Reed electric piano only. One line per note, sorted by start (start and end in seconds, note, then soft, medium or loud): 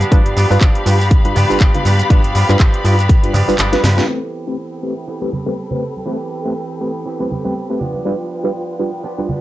0.12 0.21 G3 medium
0.12 0.21 D4 medium
0.12 0.22 F4 medium
0.12 0.22 B4 loud
0.50 0.58 G3 medium
0.50 0.58 D4 medium
0.50 0.58 F4 medium
0.50 0.58 B4 loud
0.86 0.96 G3 medium
0.86 0.96 D4 medium
0.86 0.96 F4 medium
0.86 0.96 B4 medium
1.25 1.32 G3 medium
1.25 1.32 D4 medium
1.25 1.32 F4 medium
1.25 1.33 B4 medium
1.50 1.57 G3 medium
1.50 1.57 D4 medium
1.50 1.57 F4 medium
1.50 1.57 B4 loud
1.75 1.87 G3 medium
1.75 1.87 D4 medium
1.75 1.87 F4 medium
1.75 1.87 B4 medium
2.10 2.20 G3 medium
2.10 2.20 D4 medium
2.10 2.20 F4 medium
2.10 2.20 B4 loud
2.49 2.56 G3 medium
2.49 2.57 D4 medium
2.49 2.57 F4 medium
2.49 2.57 B4 loud
2.85 2.94 G3 medium
2.85 2.94 D4 medium
2.85 2.94 F4 medium
2.85 2.95 B4 medium
3.23 3.31 G3 medium
3.23 3.31 D4 medium
3.23 3.31 F4 medium
3.23 3.31 B4 medium
3.48 3.55 G3 medium
3.48 3.56 D4 medium
3.48 3.56 F4 medium
3.48 3.56 B4 medium
3.73 3.80 G3 medium
3.73 3.80 D4 medium
3.73 3.80 F4 medium
3.73 3.81 B4 loud
3.97 4.05 G3 medium
3.97 4.05 D4 medium
3.97 4.05 F4 medium
3.97 4.05 B4 medium
4.08 4.18 A3 medium
4.08 4.18 C4 medium
4.08 4.18 B4 medium
4.47 4.55 A3 medium
4.47 4.55 C4 medium
4.47 4.55 G4 medium
4.47 4.55 B4 medium
4.83 4.92 A3 medium
4.83 4.93 C4 medium
4.83 4.93 G4 medium
4.83 4.93 B4 medium
5.21 5.29 A3 medium
5.21 5.29 C4 medium
5.21 5.29 G4 medium
5.21 5.29 B4 medium
5.46 5.54 A3 medium
5.46 5.54 C4 medium
5.46 5.54 G4 medium
5.46 5.54 B4 medium
5.71 5.83 A3 medium
5.71 5.83 C4 medium
5.71 5.83 G4 medium
5.71 5.84 B4 medium
6.06 6.16 A3 medium
6.06 6.16 C4 medium
6.06 6.16 G4 medium
6.06 6.16 B4 medium
6.45 6.53 A3 medium
6.45 6.53 C4 medium
6.45 6.53 G4 medium
6.45 6.53 B4 medium
6.81 6.91 A3 medium
6.81 6.91 C4 medium
6.81 6.91 G4 medium
6.81 6.91 B4 medium
7.20 7.27 A3 medium
7.20 7.27 C4 medium
7.20 7.28 G4 medium
7.20 7.28 B4 medium
7.45 7.52 A3 medium
7.45 7.52 C4 medium
7.45 7.52 G4 medium
7.45 7.52 B4 medium
7.69 7.79 A3 medium
7.69 7.79 C4 medium
7.69 7.79 G4 medium
7.69 7.79 B4 medium
8.05 8.15 G3 medium
8.05 8.15 D4 medium
8.05 8.15 F4 medium
8.05 8.15 B4 medium
8.44 8.51 G3 medium
8.44 8.51 D4 medium
8.44 8.52 F4 medium
8.44 8.52 B4 medium
8.79 8.89 G3 medium
8.79 8.89 D4 medium
8.79 8.89 F4 medium
8.79 8.89 B4 medium
9.18 9.26 G3 medium
9.18 9.26 D4 medium
9.18 9.26 F4 medium
9.18 9.26 B4 medium